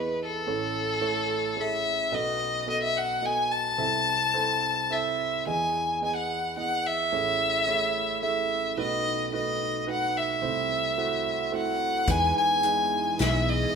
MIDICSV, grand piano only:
0, 0, Header, 1, 2, 480
1, 0, Start_track
1, 0, Key_signature, 4, "major"
1, 0, Tempo, 552995
1, 411, Time_signature, 3, 2, 24, 8
1, 11936, End_track
2, 0, Start_track
2, 0, Title_t, "Grand piano"
2, 0, Program_c, 0, 0
2, 0, Control_c, 0, 64, 127
2, 0, Note_on_c, 0, 40, 45
2, 0, Note_on_c, 0, 52, 47
2, 0, Note_on_c, 0, 59, 45
2, 0, Note_on_c, 0, 64, 42
2, 0, Note_on_c, 0, 68, 45
2, 0, Note_on_c, 0, 75, 58
2, 268, Note_off_c, 0, 68, 0
2, 269, Note_off_c, 0, 59, 0
2, 269, Note_off_c, 0, 64, 0
2, 270, Note_off_c, 0, 75, 0
2, 377, Note_off_c, 0, 40, 0
2, 377, Note_off_c, 0, 52, 0
2, 406, Note_on_c, 0, 45, 48
2, 406, Note_on_c, 0, 64, 48
2, 407, Note_on_c, 0, 57, 57
2, 408, Note_on_c, 0, 73, 61
2, 409, Note_on_c, 0, 33, 48
2, 410, Note_on_c, 0, 69, 51
2, 420, Control_c, 0, 64, 0
2, 550, Control_c, 0, 64, 127
2, 744, Note_off_c, 0, 64, 0
2, 745, Note_off_c, 0, 57, 0
2, 745, Note_off_c, 0, 73, 0
2, 746, Note_off_c, 0, 69, 0
2, 876, Note_on_c, 0, 64, 58
2, 878, Note_on_c, 0, 57, 67
2, 879, Note_on_c, 0, 73, 70
2, 885, Note_on_c, 0, 69, 55
2, 1218, Note_off_c, 0, 64, 0
2, 1219, Note_off_c, 0, 57, 0
2, 1219, Note_off_c, 0, 73, 0
2, 1222, Note_off_c, 0, 69, 0
2, 1356, Note_on_c, 0, 57, 52
2, 1359, Note_on_c, 0, 64, 46
2, 1362, Note_on_c, 0, 68, 49
2, 1363, Note_on_c, 0, 73, 59
2, 1696, Note_off_c, 0, 57, 0
2, 1697, Note_off_c, 0, 64, 0
2, 1699, Note_off_c, 0, 68, 0
2, 1700, Note_off_c, 0, 73, 0
2, 1806, Note_off_c, 0, 45, 0
2, 1808, Note_off_c, 0, 33, 0
2, 1836, Note_on_c, 0, 59, 58
2, 1839, Note_on_c, 0, 35, 47
2, 1839, Note_on_c, 0, 75, 68
2, 1840, Note_on_c, 0, 47, 52
2, 1840, Note_on_c, 0, 69, 60
2, 1842, Note_on_c, 0, 66, 54
2, 1854, Control_c, 0, 64, 0
2, 2023, Control_c, 0, 64, 127
2, 2174, Note_off_c, 0, 59, 0
2, 2175, Note_off_c, 0, 75, 0
2, 2176, Note_off_c, 0, 66, 0
2, 2176, Note_off_c, 0, 69, 0
2, 2318, Note_on_c, 0, 75, 64
2, 2320, Note_on_c, 0, 59, 55
2, 2320, Note_on_c, 0, 69, 50
2, 2321, Note_on_c, 0, 66, 50
2, 2656, Note_off_c, 0, 75, 0
2, 2657, Note_off_c, 0, 59, 0
2, 2657, Note_off_c, 0, 69, 0
2, 2658, Note_off_c, 0, 66, 0
2, 2795, Note_on_c, 0, 59, 55
2, 2797, Note_on_c, 0, 69, 52
2, 2798, Note_on_c, 0, 66, 50
2, 2799, Note_on_c, 0, 75, 62
2, 3136, Note_off_c, 0, 59, 0
2, 3137, Note_off_c, 0, 66, 0
2, 3137, Note_off_c, 0, 69, 0
2, 3138, Note_off_c, 0, 75, 0
2, 3245, Note_off_c, 0, 35, 0
2, 3245, Note_off_c, 0, 47, 0
2, 3281, Note_on_c, 0, 60, 60
2, 3281, Note_on_c, 0, 69, 52
2, 3283, Note_on_c, 0, 48, 47
2, 3283, Note_on_c, 0, 64, 50
2, 3285, Note_on_c, 0, 36, 44
2, 3285, Note_on_c, 0, 76, 67
2, 3295, Control_c, 0, 64, 0
2, 3464, Control_c, 0, 64, 127
2, 3618, Note_off_c, 0, 60, 0
2, 3618, Note_off_c, 0, 69, 0
2, 3619, Note_off_c, 0, 64, 0
2, 3620, Note_off_c, 0, 76, 0
2, 3765, Note_on_c, 0, 69, 58
2, 3765, Note_on_c, 0, 72, 70
2, 3766, Note_on_c, 0, 60, 57
2, 3768, Note_on_c, 0, 64, 53
2, 4103, Note_off_c, 0, 60, 0
2, 4103, Note_off_c, 0, 69, 0
2, 4103, Note_off_c, 0, 72, 0
2, 4104, Note_off_c, 0, 64, 0
2, 4253, Note_on_c, 0, 64, 45
2, 4254, Note_on_c, 0, 60, 44
2, 4254, Note_on_c, 0, 76, 56
2, 4261, Note_on_c, 0, 69, 45
2, 4590, Note_off_c, 0, 60, 0
2, 4590, Note_off_c, 0, 64, 0
2, 4591, Note_off_c, 0, 76, 0
2, 4594, Note_off_c, 0, 69, 0
2, 4697, Note_off_c, 0, 48, 0
2, 4698, Note_off_c, 0, 36, 0
2, 4742, Note_on_c, 0, 40, 47
2, 4742, Note_on_c, 0, 52, 42
2, 4744, Control_c, 0, 64, 0
2, 4744, Note_on_c, 0, 59, 58
2, 4746, Note_on_c, 0, 68, 55
2, 4747, Note_on_c, 0, 64, 50
2, 4750, Note_on_c, 0, 75, 58
2, 4918, Control_c, 0, 64, 127
2, 5076, Note_off_c, 0, 59, 0
2, 5077, Note_off_c, 0, 68, 0
2, 5078, Note_off_c, 0, 64, 0
2, 5079, Note_off_c, 0, 75, 0
2, 5223, Note_on_c, 0, 59, 47
2, 5226, Note_on_c, 0, 68, 51
2, 5227, Note_on_c, 0, 75, 58
2, 5229, Note_on_c, 0, 64, 47
2, 5557, Note_off_c, 0, 59, 0
2, 5559, Note_off_c, 0, 68, 0
2, 5560, Note_off_c, 0, 64, 0
2, 5560, Note_off_c, 0, 75, 0
2, 5699, Note_on_c, 0, 59, 49
2, 5702, Note_on_c, 0, 68, 46
2, 5703, Note_on_c, 0, 64, 47
2, 5704, Note_on_c, 0, 75, 54
2, 6035, Note_off_c, 0, 59, 0
2, 6036, Note_off_c, 0, 68, 0
2, 6037, Note_off_c, 0, 64, 0
2, 6037, Note_off_c, 0, 75, 0
2, 6147, Note_off_c, 0, 52, 0
2, 6148, Note_off_c, 0, 40, 0
2, 6179, Note_on_c, 0, 57, 59
2, 6181, Note_on_c, 0, 33, 47
2, 6181, Note_on_c, 0, 64, 55
2, 6182, Note_on_c, 0, 45, 46
2, 6183, Note_on_c, 0, 68, 55
2, 6183, Note_on_c, 0, 73, 64
2, 6186, Control_c, 0, 64, 0
2, 6327, Control_c, 0, 64, 127
2, 6513, Note_off_c, 0, 57, 0
2, 6514, Note_off_c, 0, 64, 0
2, 6515, Note_off_c, 0, 68, 0
2, 6515, Note_off_c, 0, 73, 0
2, 6657, Note_on_c, 0, 57, 59
2, 6658, Note_on_c, 0, 64, 61
2, 6660, Note_on_c, 0, 68, 54
2, 6665, Note_on_c, 0, 73, 70
2, 6991, Note_off_c, 0, 57, 0
2, 6991, Note_off_c, 0, 64, 0
2, 6992, Note_off_c, 0, 68, 0
2, 6994, Note_off_c, 0, 73, 0
2, 7139, Note_on_c, 0, 57, 58
2, 7143, Note_on_c, 0, 68, 45
2, 7144, Note_on_c, 0, 64, 49
2, 7144, Note_on_c, 0, 76, 59
2, 7470, Note_off_c, 0, 57, 0
2, 7472, Note_off_c, 0, 64, 0
2, 7472, Note_off_c, 0, 68, 0
2, 7472, Note_off_c, 0, 76, 0
2, 7576, Note_off_c, 0, 33, 0
2, 7576, Note_off_c, 0, 45, 0
2, 7616, Note_on_c, 0, 57, 59
2, 7616, Note_on_c, 0, 66, 58
2, 7617, Control_c, 0, 64, 0
2, 7617, Note_on_c, 0, 35, 47
2, 7617, Note_on_c, 0, 63, 52
2, 7618, Note_on_c, 0, 71, 73
2, 7619, Note_on_c, 0, 47, 51
2, 7760, Control_c, 0, 64, 127
2, 7946, Note_off_c, 0, 57, 0
2, 7946, Note_off_c, 0, 66, 0
2, 7947, Note_off_c, 0, 63, 0
2, 7947, Note_off_c, 0, 71, 0
2, 8094, Note_on_c, 0, 63, 51
2, 8094, Note_on_c, 0, 66, 47
2, 8095, Note_on_c, 0, 57, 53
2, 8101, Note_on_c, 0, 71, 62
2, 8424, Note_off_c, 0, 57, 0
2, 8424, Note_off_c, 0, 63, 0
2, 8424, Note_off_c, 0, 66, 0
2, 8428, Note_off_c, 0, 71, 0
2, 8564, Note_on_c, 0, 57, 51
2, 8567, Note_on_c, 0, 63, 48
2, 8567, Note_on_c, 0, 66, 47
2, 8567, Note_on_c, 0, 71, 63
2, 8898, Note_off_c, 0, 57, 0
2, 8900, Note_off_c, 0, 63, 0
2, 8900, Note_off_c, 0, 66, 0
2, 8900, Note_off_c, 0, 71, 0
2, 9010, Note_off_c, 0, 35, 0
2, 9011, Note_off_c, 0, 47, 0
2, 9042, Note_on_c, 0, 57, 58
2, 9044, Note_on_c, 0, 36, 51
2, 9044, Note_on_c, 0, 60, 53
2, 9044, Note_on_c, 0, 64, 51
2, 9045, Note_on_c, 0, 48, 46
2, 9045, Note_on_c, 0, 72, 65
2, 9052, Control_c, 0, 64, 0
2, 9213, Control_c, 0, 64, 127
2, 9377, Note_off_c, 0, 57, 0
2, 9378, Note_off_c, 0, 60, 0
2, 9378, Note_off_c, 0, 64, 0
2, 9379, Note_off_c, 0, 72, 0
2, 9528, Note_on_c, 0, 57, 60
2, 9529, Note_on_c, 0, 60, 57
2, 9529, Note_on_c, 0, 64, 59
2, 9530, Note_on_c, 0, 66, 69
2, 9863, Note_off_c, 0, 57, 0
2, 9863, Note_off_c, 0, 60, 0
2, 9863, Note_off_c, 0, 64, 0
2, 9864, Note_off_c, 0, 66, 0
2, 9996, Note_on_c, 0, 60, 55
2, 9997, Note_on_c, 0, 57, 57
2, 9997, Note_on_c, 0, 76, 54
2, 9999, Note_on_c, 0, 64, 58
2, 10002, Note_on_c, 0, 66, 70
2, 10342, Note_off_c, 0, 57, 0
2, 10342, Note_off_c, 0, 60, 0
2, 10343, Note_off_c, 0, 64, 0
2, 10344, Note_off_c, 0, 66, 0
2, 10452, Note_off_c, 0, 76, 0
2, 10458, Note_off_c, 0, 36, 0
2, 10458, Note_off_c, 0, 48, 0
2, 10484, Note_on_c, 0, 40, 55
2, 10484, Note_on_c, 0, 63, 62
2, 10487, Note_on_c, 0, 56, 60
2, 10488, Note_on_c, 0, 52, 55
2, 10489, Note_on_c, 0, 64, 60
2, 10489, Note_on_c, 0, 71, 77
2, 10502, Control_c, 0, 64, 0
2, 10653, Control_c, 0, 64, 127
2, 10825, Note_off_c, 0, 63, 0
2, 10827, Note_off_c, 0, 56, 0
2, 10828, Note_off_c, 0, 64, 0
2, 10828, Note_off_c, 0, 71, 0
2, 10969, Note_on_c, 0, 56, 56
2, 10972, Note_on_c, 0, 64, 54
2, 10973, Note_on_c, 0, 71, 62
2, 10976, Note_on_c, 0, 63, 54
2, 11307, Note_off_c, 0, 56, 0
2, 11309, Note_off_c, 0, 64, 0
2, 11309, Note_off_c, 0, 71, 0
2, 11311, Note_off_c, 0, 63, 0
2, 11448, Note_on_c, 0, 56, 57
2, 11448, Note_on_c, 0, 64, 54
2, 11450, Note_on_c, 0, 63, 51
2, 11456, Note_on_c, 0, 71, 63
2, 11787, Note_off_c, 0, 56, 0
2, 11787, Note_off_c, 0, 64, 0
2, 11788, Note_off_c, 0, 63, 0
2, 11791, Note_off_c, 0, 71, 0
2, 11894, Note_off_c, 0, 40, 0
2, 11896, Note_off_c, 0, 52, 0
2, 11936, End_track
0, 0, End_of_file